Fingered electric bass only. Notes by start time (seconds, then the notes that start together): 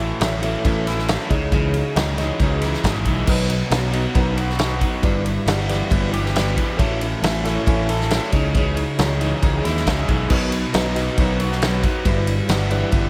Already playing: A1
0.20 A1
0.65 A1
1.30 C#2
1.95 C#2
2.40 C#2
2.84 G#1
3.05 B1
3.27 B1
3.70 B1
4.15 B1
5.03 G1
5.46 G1
5.91 G1
6.79 A1
7.22 A1
7.66 A1
8.33 C#2
8.98 C#2
9.43 C#2
9.65 D#2
9.86 C#2
10.08 B1
10.30 B1
10.74 B1
11.17 B1
12.05 G1
12.49 G1
12.92 G1